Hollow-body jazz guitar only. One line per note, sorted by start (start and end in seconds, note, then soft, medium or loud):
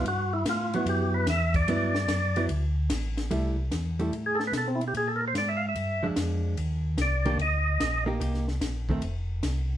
0.75 1.25 F#3 medium
0.75 1.26 B3 medium
0.75 1.26 E4 medium
1.68 1.93 F#3 medium
1.68 1.93 B3 medium
1.68 1.93 E4 medium
2.37 2.48 F#3 medium
2.37 2.49 B3 medium
2.37 2.49 E4 medium
3.31 3.55 G3 medium
3.31 3.56 A3 medium
3.31 3.56 E4 medium
3.99 4.11 G3 medium
3.99 4.12 A3 medium
3.99 4.12 E4 medium
6.03 6.54 F3 medium
6.03 6.55 G#3 medium
6.03 6.55 D4 medium
7.26 7.38 D#3 medium
7.26 7.38 A#3 medium
7.26 7.38 D4 medium
7.26 7.38 G4 medium
8.06 8.19 A#3 medium
8.06 8.19 D#4 medium
8.06 8.19 G4 medium
8.20 8.45 A#3 medium
8.20 8.45 D#4 medium
8.20 8.45 G4 medium
8.90 9.01 D#3 medium
8.90 9.02 A3 medium
8.90 9.02 C4 medium